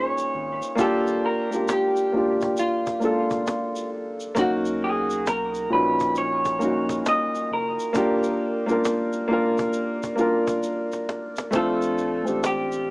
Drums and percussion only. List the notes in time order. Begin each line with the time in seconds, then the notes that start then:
0.18 shaker
0.36 cajon slap
0.62 shaker
0.78 cajon bass, shaker
1.07 shaker
1.24 cajon slap
1.52 shaker
1.68 cajon slap, shaker
1.96 shaker
2.14 cajon slap
2.41 cajon bass, shaker
2.57 cajon slap, shaker
2.86 cajon bass, shaker
3.01 cajon slap, shaker
3.30 cajon bass, shaker
3.47 cajon slap, shaker
3.76 shaker
3.95 cajon slap
4.20 shaker
4.36 cajon bass, shaker
4.65 shaker
4.82 cajon slap
5.10 shaker
5.26 cajon slap, shaker
5.55 shaker
5.72 cajon slap
6.00 cajon bass, shaker
6.15 shaker
6.45 cajon bass, shaker
6.61 shaker
6.89 cajon bass, shaker
7.06 cajon slap, shaker
7.35 shaker
7.53 cajon slap
7.79 shaker
7.95 cajon bass, shaker
8.23 shaker
8.40 cajon slap
8.69 shaker
8.85 cajon slap, shaker
9.13 shaker
9.30 cajon slap
9.58 cajon bass, shaker
9.73 cajon slap, shaker
10.03 cajon bass, shaker
10.18 cajon slap, shaker
10.47 cajon bass, shaker
10.63 cajon slap, shaker
10.92 cajon slap, shaker
11.09 cajon slap
11.37 cajon slap, shaker
11.52 cajon bass, shaker
11.82 shaker
11.98 shaker
12.27 shaker
12.44 cajon slap, shaker
12.72 shaker